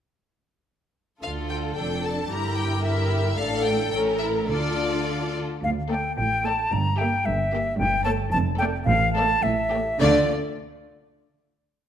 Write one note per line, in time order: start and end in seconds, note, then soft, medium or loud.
1.22 1.73 D2 soft
1.22 1.74 D3 soft
1.22 1.73 F4 soft
1.22 2.27 A4 soft
1.22 1.30 F5 soft
1.49 1.57 G5 soft
1.75 2.31 F1 soft
1.75 2.31 F2 soft
1.75 2.31 D4 soft
1.75 2.03 G5 soft
2.04 2.30 A5 soft
2.31 3.35 G1 soft
2.31 3.35 G2 soft
2.31 2.83 E4 soft
2.31 2.83 G4 soft
2.31 2.85 A#4 soft
2.31 2.57 A#5 medium
2.57 2.84 G5 medium
2.84 3.36 E4 soft
2.84 3.37 G4 soft
2.84 3.36 A#4 soft
2.84 3.36 E5 medium
3.37 3.88 A1 medium
3.37 3.88 A2 medium
3.37 3.89 D4 soft
3.37 3.88 A4 soft
3.37 4.47 A4 medium
3.37 3.64 F5 medium
3.64 3.90 G5 medium
3.91 4.48 A1 medium
3.91 4.48 A2 soft
3.91 4.20 C#4 medium
3.91 4.50 A#4 soft
3.91 3.99 G5 medium
4.19 4.31 E4 soft
4.19 4.27 E5 medium
4.49 5.43 D2 soft
4.49 5.43 D3 soft
4.49 5.36 F4 soft
4.49 5.42 F4 soft
4.49 5.42 A4 soft
4.49 5.33 D5 medium
5.63 6.07 D2 medium
5.63 5.70 F5 medium
5.90 6.11 A3 medium
5.90 6.11 A4 medium
5.90 6.11 D5 soft
5.90 6.15 G5 medium
6.16 6.61 A1 medium
6.16 6.61 A2 medium
6.16 6.47 G5 medium
6.45 6.66 A3 medium
6.45 6.66 A4 medium
6.45 6.66 D5 medium
6.45 6.74 A5 medium
6.73 7.15 G1 medium
6.73 7.15 G2 medium
6.73 6.99 A#5 medium
6.98 7.20 A#3 medium
6.98 7.19 G4 medium
6.98 7.19 E5 medium
6.98 7.27 G5 medium
7.25 7.68 G1 medium
7.25 7.69 G2 medium
7.25 7.78 E5 medium
7.53 7.73 A#3 medium
7.53 7.73 G4 medium
7.53 7.73 E5 medium
7.78 8.21 G1 medium
7.78 8.21 G2 medium
7.78 8.04 G5 medium
8.04 8.26 A3 medium
8.04 8.26 A4 medium
8.04 8.25 C#5 medium
8.04 8.10 A5 medium
8.32 8.76 F1 medium
8.32 8.76 F2 medium
8.32 8.38 A5 medium
8.58 8.80 A3 medium
8.58 8.80 A4 medium
8.58 8.81 D5 medium
8.58 8.65 G5 loud
8.85 9.32 A1 loud
8.85 9.32 A2 medium
8.85 9.13 F5 loud
9.13 9.37 A3 medium
9.13 9.37 A4 medium
9.13 9.37 D5 medium
9.13 9.44 A5 medium
9.43 9.89 A1 medium
9.43 9.90 A2 medium
9.43 10.00 E5 medium
9.72 9.94 A3 medium
9.72 9.94 G4 medium
9.72 9.93 C#5 medium
10.00 10.32 D2 medium
10.00 10.32 D3 medium
10.00 10.32 A3 medium
10.00 10.32 F4 medium
10.00 10.32 D5 medium